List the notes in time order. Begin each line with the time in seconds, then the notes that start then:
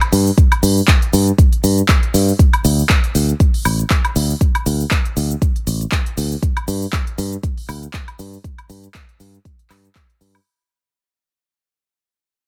0.01 closed hi-hat, high woodblock
0.12 G2, open hi-hat, shaker
0.27 shaker
0.38 kick, closed hi-hat, shaker
0.52 closed hi-hat, high woodblock
0.63 G2, open hi-hat, shaker
0.77 shaker
0.88 kick, clap, closed hi-hat, shaker
1.02 closed hi-hat
1.13 G2, open hi-hat, shaker
1.27 closed hi-hat, shaker
1.38 kick, closed hi-hat, shaker
1.53 closed hi-hat
1.64 G2, open hi-hat, shaker
1.78 closed hi-hat, shaker
1.89 kick, clap, closed hi-hat, shaker
2.03 closed hi-hat
2.14 G2, open hi-hat, shaker
2.28 shaker
2.39 kick, closed hi-hat, shaker
2.53 closed hi-hat, high woodblock
2.65 D2, open hi-hat, shaker
2.79 shaker
2.89 kick, clap, closed hi-hat, shaker
3.04 closed hi-hat
3.15 D2, open hi-hat, shaker
3.29 closed hi-hat, shaker
3.40 kick, closed hi-hat, shaker
3.54 open hi-hat
3.65 A1, open hi-hat, high woodblock, shaker
3.79 closed hi-hat, shaker
3.90 kick, clap, closed hi-hat, shaker
4.05 closed hi-hat, high woodblock
4.16 D2, open hi-hat, shaker
4.30 shaker
4.41 kick, closed hi-hat, shaker
4.55 closed hi-hat, high woodblock
4.66 D2, open hi-hat, shaker
4.80 shaker
4.91 kick, clap, closed hi-hat, shaker
5.05 closed hi-hat
5.17 D2, open hi-hat, shaker
5.31 closed hi-hat, shaker
5.42 kick, closed hi-hat, shaker
5.56 closed hi-hat
5.67 A1, open hi-hat, shaker
5.81 closed hi-hat, shaker
5.92 kick, clap, closed hi-hat, shaker
6.06 closed hi-hat
6.17 D2, open hi-hat, shaker
6.32 shaker
6.43 kick, closed hi-hat, shaker
6.57 closed hi-hat, high woodblock
6.68 G2, open hi-hat, shaker
6.82 shaker
6.93 kick, clap, closed hi-hat, shaker
7.07 closed hi-hat
7.18 G2, open hi-hat, shaker
7.32 closed hi-hat, shaker
7.43 kick, closed hi-hat, shaker
7.58 open hi-hat
7.69 D2, open hi-hat, high woodblock, shaker
7.83 closed hi-hat, shaker
7.94 kick, clap, closed hi-hat, shaker
8.08 closed hi-hat, high woodblock
8.19 G2, open hi-hat, shaker
8.33 shaker
8.44 kick, closed hi-hat, shaker
8.58 closed hi-hat, high woodblock
8.70 G2, open hi-hat, shaker
8.84 closed hi-hat, shaker
8.94 kick, clap, closed hi-hat, shaker
9.09 closed hi-hat
9.20 G2, open hi-hat, shaker
9.34 closed hi-hat, shaker
9.45 kick, closed hi-hat, shaker
9.59 closed hi-hat
9.70 G2, clap, open hi-hat, high woodblock, shaker
9.84 closed hi-hat, shaker
9.95 kick, clap, closed hi-hat, shaker
10.10 closed hi-hat
10.21 G2, open hi-hat, shaker
10.35 open hi-hat, high woodblock, shaker